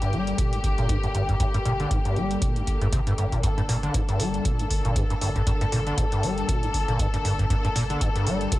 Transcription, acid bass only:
0.02 G2
0.13 G3
0.39 A#2
0.53 G2
0.78 A#2
0.89 G2
1.04 G2
1.15 G2
1.29 G2
1.40 G2
1.54 G2
1.66 A#2
1.80 D3
1.91 G2
2.05 G2
2.16 G3
2.42 A#2
2.56 G2
2.82 G2
2.93 C3
3.07 G2
3.18 G2
3.32 A#2
3.43 G2
3.58 G2
3.69 A#2
3.83 D3
3.94 G2
4.09 G2
4.20 G3
4.45 A#2
4.60 G2
4.85 A#2
4.96 G2
5.10 G2
5.22 G2
5.36 G2
5.47 G2
5.61 G2
5.72 A#2
5.87 D3
5.98 G2
6.12 G2
6.23 G3
6.49 A#2
6.63 G2
6.88 A#2
6.99 G2
7.14 G2
7.25 G2
7.39 G2
7.50 G2
7.65 G2
7.76 A#2
7.90 D3
8.01 G2
8.16 G2
8.27 G3
8.52 A#2

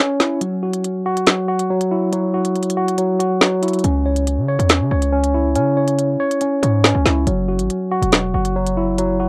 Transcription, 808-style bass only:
3.84 C#2
4.38 C#3
4.59 E2
4.81 C#3
4.91 C#2
5.56 C#3
6.63 G#2
6.95 C#2
7.06 C#2
7.27 F#1
7.59 G#1
8.02 E1
8.34 F#1

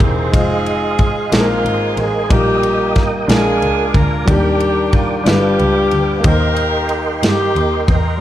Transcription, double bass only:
0.01 E1
0.34 F1
1.32 A#1
1.64 G#1
1.97 A1
2.30 A#1
3.28 A#1
3.62 C#2
3.94 D2
4.28 D#2
5.26 G1
5.59 C#2
5.91 D2
6.24 D#2
7.23 G2
7.56 D#2
7.88 E2

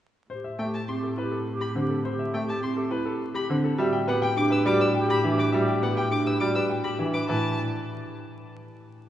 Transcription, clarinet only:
0.30 G4
0.60 G4
0.91 G4
1.21 G4
1.52 G4
1.81 G4
2.12 G4
2.43 G4
2.73 G4
3.04 G4
3.34 G4
3.79 G4
4.09 G4
4.40 G4
4.69 G4
5.00 G4
5.29 G4
5.60 G4
5.91 G4
6.21 G4
6.52 G4
6.82 G4

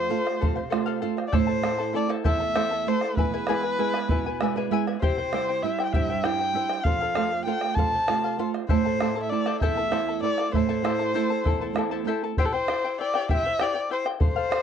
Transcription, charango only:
0.10 A4 C5 F5
0.25 C5 F5
0.41 A4 C5 F5
0.55 C5 F5
0.70 A4 C5 F5
0.86 A4 C5 F5
1.02 A4 C5 F5
1.17 C5 F5
1.32 E4 A4 C5 E5 A5
1.47 E4 A4 A5
1.63 E4 A4 E5 A5
1.78 E4 A4 A5
1.93 E4 A4 E5 A5
2.09 E4 A4 C5 E5 A5
2.24 E4 A4 C5 E5 A5
2.40 E4 A4 A5
2.55 E4 A4 C5 E5 A5
2.71 E4 A4 A5
2.87 E4 A4 E5 A5
3.02 E4 A4 A5
3.17 E4 B4 E5 G#5
3.34 E4 G#4 B4 E5 G#5
3.48 E4 G#4 B4 E5 G#5
3.63 E4 B4 G#5
3.79 E4 G#4 B4 E5 G#5
3.94 E4 B4 G#5
4.10 E4 B4 E5 G#5
4.26 E4 B4 G#5
4.41 E4 B4 E5 G#5
4.57 E4 G#4 B4 E5 G#5
4.72 E4 G#4 B4 E5 G#5
4.87 E4 B4 G#5
5.02 E4 G4 C5 E5 G5
5.18 E4 C5 G5
5.33 E4 C5 E5 G5
5.49 E4 C5 G5
5.65 E4 C5 E5 G5
5.80 E4 G4 C5 E5 G5
5.94 E4 G4 C5 E5 G5
6.10 E4 C5 G5
6.24 E4 G4 C5 E5 G5
6.40 E4 C5 G5
6.55 E4 C5 E5 G5
6.69 E4 C5 G5
6.85 A4 C5 F5
7.01 A4 C5 F5
7.16 A4 C5 F5
7.31 C5 F5
7.47 A4 C5 F5
7.63 C5 F5
7.78 A4 C5 F5
7.93 C5 F5
8.08 A4 C5 F5
8.24 A4 C5 F5
8.39 A4 C5 F5
8.54 C5 F5
8.69 E4 A4 C5 E5 A5
8.85 E4 A4 A5
9.00 E4 A4 E5 A5
9.16 E4 A4 A5
9.32 E4 A4 E5 A5
9.46 E4 A4 C5 E5 A5
9.62 E4 A4 C5 E5 A5
9.77 E4 A4 A5
9.92 E4 A4 C5 E5 A5
10.09 E4 A4 A5
10.24 E4 A4 E5 A5
10.39 E4 A4 A5
10.55 E4 A4 E5 A5
10.69 E4 A4 C5 E5 A5
10.84 E4 A4 C5 E5 A5
10.99 E4 A4 A5
11.15 E4 A4 C5 E5 A5
11.30 E4 A4 A5
11.45 E4 A4 E5 A5
11.61 E4 A4 A5
11.76 E4 A4 E5 A5
11.91 E4 A4 C5 E5 A5
12.07 E4 A4 C5 E5 A5
12.24 E4 A4 A5
12.38 E4 G4 C5 E5 G5
12.54 E4 C5 G5
12.68 E4 C5 E5 G5
12.85 E4 C5 G5
13.00 E4 C5 E5 G5
13.15 E4 G4 C5 E5 G5
13.30 E4 G4 C5 E5 G5
13.45 E4 C5 G5
13.60 E4 G4 C5 E5 G5
13.75 E4 C5 G5
13.90 E4 C5 E5 G5
14.06 E4 C5 G5
14.20 A4 C5 F5
14.36 A4 C5 F5
14.50 A4 C5 F5

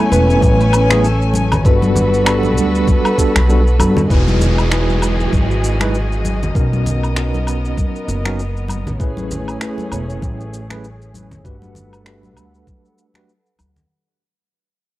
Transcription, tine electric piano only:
Already playing: A3 B3 C#4 E4 G#5
0.89 A3 B3 C#4 E4 G#4
1.64 G3 B3 D4 F#4 A4
2.25 G3 B3 D4 F#4 A4
3.17 G3 B3 D4 F#4 A4
3.48 G3 B3 D4 F#4 A4
3.79 G3 B3 D4 F#4 A4
4.09 G#3 D#4 E4 F#4 B4
4.70 G#3 D#4 E4 F#4 B4
5.80 G#3 D#4 E4 F#4 B4
6.54 B3 C#4 D#4 F#4 A#4
7.15 B3 C#4 D#4 F#4 A#4
8.25 B3 C#4 D#4 F#4 A#4
8.99 A3 C#4 E4 G#4 B4
9.60 A3 C#4 E4 G#4 B4
10.69 A3 C#4 E4 G#4 B4
11.44 A3 D4 F#4 G4 B4
12.04 A3 D4 F#4 G4 B4
13.15 A3 D4 F#4 G4 B4

